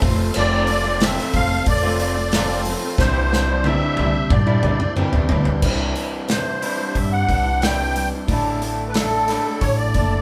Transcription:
0.01 upright bass F1, clean electric guitar F2 C3, twelve-string acoustic guitar F3 A3 C4 F4, tonewheel organ C4 F4 A4 C5, kick, open hi-hat
0.34 upright bass F1, twelve-string acoustic guitar F2 C3 F3 A3 C4 F4, accordion D5, crash
0.67 twelve-string acoustic guitar F3 A3 C4, open hi-hat
0.71 twelve-string acoustic guitar F4
0.85 twelve-string acoustic guitar F3 A3 C4 F4
1.00 twelve-string acoustic guitar F2 C3 F3 A3 C4 F4, accordion E5, snare, open hi-hat
1.18 twelve-string acoustic guitar F3 A3 C4 F4, snare
1.34 upright bass F1, twelve-string acoustic guitar F3 A3 C4 F4, accordion F5, kick, open hi-hat
1.50 twelve-string acoustic guitar F3 A3 C4 F4, muted clean electric guitar stroke
1.66 upright bass F1, accordion D5, kick, open hi-hat
1.84 twelve-string acoustic guitar F3 A3 C4 F4
1.99 clean electric guitar F3 A3 C4, accordion D5, open hi-hat
2.03 clean electric guitar F4
2.17 twelve-string acoustic guitar F3 A3 C4 F4, muted clean electric guitar stroke
2.32 twelve-string acoustic guitar F2 C3 F3 A3 C4 F4, snare, open hi-hat
2.49 clean electric guitar F3 A3 C4 F4
2.65 twelve-string acoustic guitar F3 A3 C4 F4, open hi-hat
2.81 twelve-string acoustic guitar F3 A3 C4 F4
2.98 upright bass C2, twelve-string acoustic guitar C3 E3 G3 D4 E4, tonewheel organ D4 E4 G4 C5, accordion C5, kick, snare
3.31 twelve-string acoustic guitar E3 G3 D4 E4, snare
3.48 twelve-string acoustic guitar G3 D4 E4
3.64 twelve-string acoustic guitar C3 E3 G3 D4 E4, accordion E5, high tom
3.81 twelve-string acoustic guitar G3 D4 E4
3.96 upright bass C2, twelve-string acoustic guitar E3 G3 D4 E4, high tom
4.13 twelve-string acoustic guitar G3 D4 E4, muted clean electric guitar stroke
4.30 upright bass G2, accordion D5, kick, mid tom
4.46 twelve-string acoustic guitar G3 D4 E4, mid tom
4.63 upright bass C2, clean electric guitar E3 G3 D4 E4, mid tom
4.79 twelve-string acoustic guitar G3 D4 E4, muted clean electric guitar stroke, mid tom
4.96 twelve-string acoustic guitar C3 E3 G3 D4 E4, mid tom
5.13 upright bass E2, clean electric guitar D4 E4, floor tom
5.17 clean electric guitar G3
5.29 upright bass D2, twelve-string acoustic guitar E3 G3 D4 E4, floor tom
5.45 upright bass C2, floor tom
5.62 upright bass C2, twelve-string acoustic guitar C3 E3 G3 D4 E4, tonewheel organ D4 E4 G4 C5, kick, crash
5.95 twelve-string acoustic guitar E3 G3 D4 E4, open hi-hat
6.28 twelve-string acoustic guitar C3 E3 G3 D4 E4, accordion C5, snare, open hi-hat
6.61 twelve-string acoustic guitar E3 G3 D4 E4, open hi-hat
6.65 clean electric guitar C3 E3
6.78 twelve-string acoustic guitar G3 D4 E4
6.95 upright bass G2, accordion E5, kick, open hi-hat
7.12 accordion F#5
7.28 upright bass C2, twelve-string acoustic guitar E3 G3 D4 E4, kick, open hi-hat
7.45 twelve-string acoustic guitar G3 D4 E4
7.61 twelve-string acoustic guitar C3 E3 G3 D4 E4, accordion G5, snare, open hi-hat
7.94 twelve-string acoustic guitar E3 G3 D4 E4, open hi-hat
8.11 twelve-string acoustic guitar G3 D4 E4
8.27 upright bass A1, twelve-string acoustic guitar A2 D3 A3 D4 E4, tonewheel organ D4 E4 A4 D5, kick, open hi-hat
8.61 twelve-string acoustic guitar D3 A3 D4 E4, open hi-hat
8.88 accordion B4
8.94 twelve-string acoustic guitar A2 D3 A3 D4 E4, accordion A4, snare, open hi-hat
9.28 clean electric guitar A2, twelve-string acoustic guitar D3 A3 D4 E4, snare, open hi-hat
9.46 twelve-string acoustic guitar A3 D4 E4
9.60 upright bass A1, accordion C#5, kick, open hi-hat
9.77 accordion D5
9.94 upright bass F#1, twelve-string acoustic guitar D3 A3 D4, kick, open hi-hat
9.99 twelve-string acoustic guitar E4
10.13 twelve-string acoustic guitar A3 D4 E4

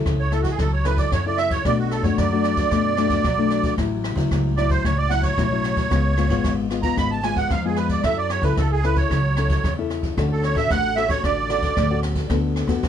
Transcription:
Already playing: nylon-string guitar C#4 E4 A4
0.06 upright bass C#2, nylon-string guitar C#3, kick, cross-stick, ride
0.20 accordion C#5
0.32 nylon-string guitar C#4 E4 A4, accordion A4, cross-stick, ride
0.42 accordion F#4, kick, ride
0.50 accordion G#4
0.59 upright bass C#2, nylon-string guitar F#3, accordion A4, kick, cross-stick, ride
0.73 accordion C#5
0.85 nylon-string guitar C#4 E4 A4, accordion B4, cross-stick, ride
0.97 accordion D5, kick, ride
1.12 upright bass F#2, nylon-string guitar C#3, accordion C#5, kick, cross-stick, ride
1.26 nylon-string guitar C#4 E4 A4, accordion D5
1.38 accordion E5, cross-stick, ride
1.51 accordion C#5, kick, ride
1.65 upright bass B1, nylon-string guitar B2 A3 D4 F#4, accordion D5, kick, cross-stick, ride
1.79 accordion F#4
1.91 accordion A4, cross-stick, ride
2.03 upright bass F#2, nylon-string guitar A3 D4 F#4, accordion C#5, kick, ride
2.18 upright bass F#2, nylon-string guitar F#3, accordion D5, kick, cross-stick, ride
2.32 nylon-string guitar A3 D4 F#4
2.44 cross-stick, ride
2.57 kick, ride
2.71 upright bass F#2, nylon-string guitar B2 A3 D4 F#4, kick, cross-stick, ride
2.97 nylon-string guitar A3 D4 F#4, cross-stick, ride
3.10 kick, ride
3.24 upright bass B1, nylon-string guitar F#3, kick, cross-stick, ride
3.38 nylon-string guitar A3 D4 F#4
3.50 cross-stick, ride
3.63 kick, ride
3.78 upright bass A1, nylon-string guitar A2 F#3 C#4 E4, kick, cross-stick, ride
4.04 cross-stick, ride
4.15 upright bass C#2, nylon-string guitar F#3 C#4 E4, kick, ride
4.30 upright bass C#2, nylon-string guitar A2, kick, cross-stick, ride
4.57 nylon-string guitar F#3 C#4 E4, accordion D5, cross-stick, ride
4.70 accordion C5, kick, ride
4.84 upright bass C#2, nylon-string guitar A2, accordion C#5, kick, cross-stick, ride
4.98 accordion D5
5.09 nylon-string guitar F#3 C#4 E4, accordion F#5, cross-stick, ride
5.23 accordion C#5, kick, ride
5.38 upright bass B1, nylon-string guitar A2 F#3 C#4 E4, kick, cross-stick, ride
5.51 nylon-string guitar F#3 C#4 E4
5.64 cross-stick, ride
5.77 kick, ride
5.90 upright bass C#2, nylon-string guitar C#3 G#3 B3 F4, kick, cross-stick, ride
6.17 nylon-string guitar G#3 B3 F4, cross-stick, ride
6.29 upright bass G#1, nylon-string guitar G#3 B3 F4, kick, ride
6.44 upright bass G#1, nylon-string guitar G#2, kick, cross-stick, ride
6.70 nylon-string guitar G#3 B3 F4, cross-stick, ride
6.83 nylon-string guitar G#3 B3 F4, accordion A#5, kick, ride
6.97 upright bass G#1, nylon-string guitar C#3, accordion B5, kick, cross-stick, ride
7.11 accordion A5
7.23 nylon-string guitar G#3 B3 F4, accordion G#5, cross-stick, ride
7.36 accordion F#5, kick, ride
7.50 upright bass F2, nylon-string guitar G#2, accordion F5, kick, cross-stick, ride
7.65 nylon-string guitar G#3 B3 F4, accordion G#4
7.76 accordion B4, cross-stick, ride
7.89 accordion D5, kick, ride
8.03 upright bass F#2, nylon-string guitar F#3 C#4 E4 A4, accordion E5, kick, cross-stick, ride
8.18 accordion D5
8.30 accordion C#5, cross-stick, ride
8.42 upright bass C#2, nylon-string guitar C#4 E4 A4, accordion B4, kick, ride
8.57 upright bass C#2, nylon-string guitar C#3, accordion A4, kick, cross-stick, ride
8.72 accordion G#4
8.83 nylon-string guitar C#4 E4 A4, accordion B4, cross-stick, ride
8.96 accordion C#5, kick, ride
9.11 upright bass C#2, nylon-string guitar F#3, kick, cross-stick, ride
9.37 nylon-string guitar C#4 E4 A4, cross-stick, ride
9.49 kick, ride
9.64 upright bass E2, nylon-string guitar C#3, kick, cross-stick, ride
9.78 nylon-string guitar C#4 E4 A4
9.90 cross-stick, ride
10.03 kick, ride
10.17 upright bass D2, nylon-string guitar D3 C#4 F#4 A4, kick, cross-stick, ride
10.32 accordion A4
10.43 accordion C#5, cross-stick, ride
10.55 upright bass A1, nylon-string guitar C#4 F#4 A4, accordion E5, kick, ride
10.70 upright bass A1, nylon-string guitar A2, accordion F#5, kick, cross-stick, ride
10.96 nylon-string guitar C#4 F#4 A4, accordion E5, cross-stick, ride
11.09 nylon-string guitar C#4 F#4 A4, accordion C#5, kick, ride
11.24 upright bass A1, nylon-string guitar D3, accordion D5, kick, cross-stick, ride
11.49 nylon-string guitar C#4 F#4 A4, cross-stick, ride
11.62 kick, ride
11.76 upright bass D2, nylon-string guitar A2, kick, cross-stick, ride
11.90 nylon-string guitar C#4 F#4 A4
12.03 cross-stick, ride
12.15 kick, ride
12.29 upright bass D2, nylon-string guitar D3 B3 F#4 A4, kick, cross-stick, ride
12.56 cross-stick, ride
12.67 upright bass F#2, nylon-string guitar B3 F#4 A4, kick, ride
12.83 upright bass F#2, nylon-string guitar D3, kick, cross-stick, ride

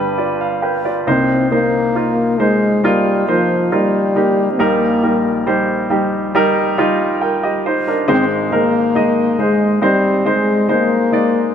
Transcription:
Already playing: grand piano G1 G2 G3 D4 B4
0.18 grand piano F4 D5
0.41 grand piano F5
0.62 grand piano B4 G5
0.85 grand piano F4 D5
1.07 grand piano C2 C3 A#3 D#4 C5, french horn C4
1.51 french horn A#3, grand piano A#3 D#4 C5
1.95 grand piano A#3 D#4 F4
2.39 french horn G#3, grand piano A#3 D#4 C5
2.84 french horn G3, grand piano A#3 D#4 F4
3.28 french horn F3, grand piano A#3 D#4 C5
3.72 french horn G3, grand piano A#3 D#4 F4
4.16 grand piano A#3 D#4 G4
4.52 french horn C4
4.59 grand piano A#1 A#2 G3 D#4 A#4, french horn A#3
5.03 grand piano G3 D#4 A#4
5.46 grand piano G3 D#4 C5
5.90 grand piano G3 D#4 G4
6.35 grand piano G3 D#4 A#4
6.78 grand piano G3 D#4 F4
7.21 grand piano A#4 G5
7.43 grand piano G4 D#5
7.66 grand piano D#4 C5
7.87 grand piano D4 A#4
8.08 grand piano G#1 G#2 G#3 D#4 C5, french horn C4
8.52 grand piano G#3 D#4 A#4, french horn A#3
8.95 grand piano G#3 D#4 D#5
9.39 grand piano G#3 D#4 C5, french horn G#3
9.82 french horn G3, grand piano C4 D#4 C5
10.25 grand piano G#3 D#4 C5, french horn G#3
10.69 grand piano G#3 D#4 C5, french horn A#3
11.12 grand piano G#3 D#4 D5

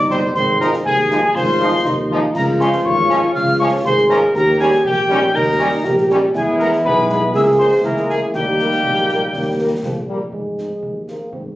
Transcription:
Already playing: tuba G1, euphonium D#4
0.10 trombone section G3 C4, french horn section G3 D#4 G4, cornet C5, piccolo C6, snare
0.35 tuba G#1, euphonium C4, cornet C5, piccolo C6, concert bass drum, snare, crash
0.60 trombone section F3 D#4, french horn section G#3 D#4 F4, cornet A#4, piccolo A#5, snare
0.73 snare
0.85 tuba D#2, cornet G#4, piccolo G#5, concert bass drum
1.09 trombone section F3 D#4, french horn section G#3 D#4 F4, snare
1.35 tuba G#1, euphonium F4, cornet C5, piccolo C6, concert bass drum, snare
1.60 trombone section F3 D#4, french horn section G#3 D#4 F4
1.85 tuba D#2, euphonium D#4, concert bass drum, snare
2.10 trombone section F3 D#4, french horn section G#3 D#4 F4
2.34 tuba C#2, euphonium F4, cornet A#4, piccolo A#5, concert bass drum, snare, crash
2.59 trombone section F3 C#4, french horn section G#3 C#4 F4, cornet C5, piccolo C6, snare
2.73 snare
2.85 tuba G#1, cornet C#5, piccolo C#6, concert bass drum
3.09 trombone section F3 C#4, french horn section G#3 C#4 F4, snare
3.34 tuba C#2, cornet F5, piccolo F6, concert bass drum, snare
3.60 trombone section F3 C#4, french horn section G#3 C#4 F4, cornet C#5, piccolo C#6
3.84 tuba G#1, euphonium G#4, cornet C5, piccolo C6, concert bass drum, snare
3.97 snare
4.09 trombone section F3 C#4, french horn section G#3 C#4 F4, cornet A#4, piccolo A#5, snare
4.34 tuba D#2, euphonium G4, cornet A#4, piccolo A#5, concert bass drum, snare, crash
4.59 french horn section G3 C#4 D#4, trombone section G3 C#4, cornet G#4, piccolo G#5, snare
4.72 snare
4.84 tuba A#1, cornet G4, piccolo G5, concert bass drum
5.09 trombone section G3 C#4, french horn section G3 C#4 D#4, snare
5.34 tuba D#2, euphonium D#4, cornet A#4, piccolo A#5, concert bass drum, snare
5.59 trombone section G3 C#4, french horn section G3 C#4 D#4
5.84 tuba A#1, euphonium G4, concert bass drum, snare
5.98 snare
6.10 trombone section G3 C#4, french horn section G3 C#4 D#4, snare
6.34 tuba E2, trombone section G#3 B3, euphonium E4, cornet G#4, piccolo G#5, concert bass drum, snare, crash
6.58 french horn section G#3 B3 G#4, cornet A#4, piccolo A#5, snare
6.73 snare
6.84 tuba B1, trombone section G#3 B3, cornet B4, piccolo B5, concert bass drum
7.09 french horn section G#3 B3 G#4, snare
7.34 tuba C#2, trombone section G#3 A#3, euphonium G#4, cornet E5, piccolo E6, concert bass drum, snare
7.59 french horn section G#3 A#3 A#4, cornet C5, piccolo C6
7.83 tuba C#2, trombone section G#3 A#3, euphonium E4, cornet A#4, piccolo A#5, concert bass drum, snare
7.97 snare
8.09 french horn section G#3 A#3 A#4, cornet G#4, piccolo G#5, snare
8.34 tuba D#2, trombone section G3 A#3, euphonium D#4, cornet G4, piccolo G5, concert bass drum, snare, crash
8.59 french horn section G3 A#3 A#4, snare
8.71 snare
8.83 tuba A#1, concert bass drum
9.09 french horn section G3 A#3 A#4, snare
9.33 tuba D#2, concert bass drum, snare
9.59 french horn section G3 A#3 A#4
9.82 tuba A#1, euphonium F3, concert bass drum, snare
10.08 euphonium G3, french horn section G3 A#3 A#4
10.32 tuba G#2, euphonium G#3, concert bass drum
10.58 french horn section C4 D#4 G#4, cornet C5, snare
10.83 tuba D#2, concert bass drum
11.08 euphonium A#3, french horn section C4 D#4 G#4, cornet C5, snare
11.32 tuba G#2, euphonium C4, concert bass drum

